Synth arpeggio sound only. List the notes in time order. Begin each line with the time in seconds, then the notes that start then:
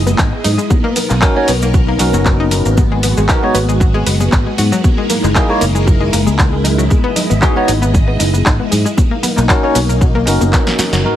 0.06 B3
0.19 D#4
0.33 B3
0.44 D#4
0.58 G#3
0.70 F#3
0.84 A#3
0.96 B3
1.10 A#3
1.22 F#3
1.36 A#3
1.48 B3
1.62 A#3
1.75 F#3
1.88 A#3
2.00 F#3
2.14 F#3
2.26 A#3
2.40 D#4
2.51 A#4
2.66 A#3
2.78 F#3
2.92 G#3
3.03 B3
3.17 G#3
3.29 F#3
3.43 G#3
3.55 B3
3.69 G#3
3.80 F#3
3.94 G#3
4.06 B3
4.20 G#3
4.32 B3
4.46 G#3
4.58 F#4
4.72 F#3
4.84 F#3
4.98 G#3
5.10 A#3
5.24 G#3
5.36 F#3
5.50 G#3
5.61 A#3
5.75 G#3
5.87 F#3
6.01 G#3
6.13 A#3
6.26 G#3
6.39 A#3
6.53 G#3
6.64 D#4
6.78 F#3
6.90 G#3
7.04 B3
7.16 D#4
7.30 B3
7.42 G#3
7.56 B3
7.68 D#4
7.82 B3
7.94 G#3
8.08 B3
8.20 D#4
8.34 B3
8.46 D#4
8.60 B3
8.71 G#4
8.85 G#3
8.97 F#3
9.11 A#3
9.23 B3
9.37 A#3
9.49 F#3
9.63 A#3
9.75 B3
9.89 A#3
10.01 F#3
10.15 A#3
10.27 B3
10.41 A#3
10.53 B3
10.67 A#3
10.79 F#4
10.93 F#3
11.05 F#3